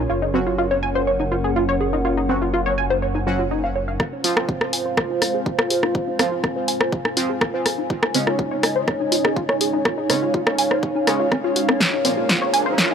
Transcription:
Already playing: C#4 A#4 C#5 G#5
0.10 F#1 F#3 A#3 C#4 F4 A#4
0.22 D#4
0.34 F#3 C4 C#4 F#4 F#5
0.47 F4
0.58 F4
0.71 C#5
0.83 G#5
0.95 C5
1.07 C#5
1.20 D#4
1.32 F4
1.44 G#4
1.56 F4
1.69 C#5
1.80 G#4
1.93 D#4
2.05 F4
2.17 D#4
2.29 F#3 C4 C#4 F#4
2.42 F4
2.54 F4
2.66 C#5
2.78 G#5
2.90 C5
3.02 C#5
3.15 D#4
3.27 F#3 C#4 F4 F#4
3.39 F4
3.51 D#4
3.64 F5
3.76 C#5
3.88 F5
4.00 G#3 C4 F4 C5 F5, kick, cross-stick
4.11 D#4 C5
4.24 F3 C4 F4, open hi-hat
4.37 F4, cross-stick
4.49 F4, kick
4.61 C5 G#5, cross-stick
4.73 G#5, open hi-hat
4.86 C5
4.97 C5, kick, cross-stick
5.10 D#4
5.22 F4, cross-stick, open hi-hat
5.34 G#4
5.46 F4, kick
5.59 C5, cross-stick
5.70 G#4, open hi-hat
5.83 D#4, cross-stick
5.95 F4, kick
6.07 D#4
6.19 F3 C4 F4, cross-stick, open hi-hat
6.32 F4
6.44 F4, kick, cross-stick
6.56 C5
6.68 G#5, open hi-hat
6.81 C5, cross-stick
6.92 C5, kick
7.05 D#4, cross-stick
7.17 F3 C4 F4, open hi-hat
7.29 G#4
7.41 F4, kick, cross-stick
7.54 C5
7.66 G#4, cross-stick, open hi-hat
7.78 D#4
7.90 G#3 C#4 D#4 F4 C#5 D#5, kick
7.98 C#5
8.03 D#4, cross-stick
8.14 C#3 G#3 C4 C#4, open hi-hat
8.27 F4, cross-stick
8.39 F4, kick
8.51 C#5
8.63 G#5, cross-stick, open hi-hat
8.76 C5
8.88 C#5, kick, cross-stick
9.00 D#4
9.12 F4, open hi-hat
9.25 G#4, cross-stick
9.36 F4, kick
9.49 C#5, cross-stick
9.61 G#4, open hi-hat
9.73 D#4
9.85 F4 F5, kick, cross-stick
9.98 D#4
10.10 C#3 G#3 C4 C#4, cross-stick, open hi-hat
10.22 F4
10.34 F4, kick
10.47 C#5, cross-stick
10.58 G#5, open hi-hat
10.71 C5, cross-stick
10.83 C#5, kick
10.95 D#4
11.07 C#3 G#3 C#4 G#4, cross-stick, open hi-hat
11.20 F4
11.32 C4, kick, cross-stick
11.44 F4
11.56 F#4, open hi-hat
11.69 C4, cross-stick
11.80 F4 G#4 A#4, kick, snare, riser
11.93 D#4
12.05 A#2 F3 A#3 C4, open hi-hat
12.17 F4 A#5
12.29 F4, kick, snare
12.42 C#5
12.53 G#5, open hi-hat
12.66 C5
12.78 C#5, kick, snare
12.90 D#4

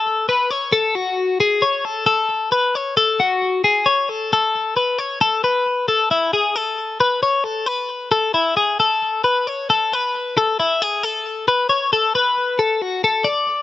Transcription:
Already playing: A4
0.29 B4
0.51 C#5
0.73 A4
0.95 F#4
1.40 G#4
1.62 C#5
1.85 A4
2.06 A4
2.52 B4
2.75 C#5
2.97 A4
3.20 F#4
3.64 G#4
3.86 C#5
4.09 A4
4.33 A4
4.77 B4
4.99 C#5
5.21 A4
5.44 B4
5.88 A4
6.11 E4
6.33 G#4
6.56 A4
7.00 B4
7.23 C#5
7.44 A4
7.66 B4
8.12 A4
8.34 E4
8.57 G#4
8.80 A4
9.24 B4
9.47 C#5
9.70 A4
9.93 B4
10.38 A4
10.60 E4
10.82 G#4
11.03 A4
11.48 B4
11.69 C#5
11.93 A4
12.15 B4
12.59 A4
12.82 F#4
13.04 A4
13.24 D5

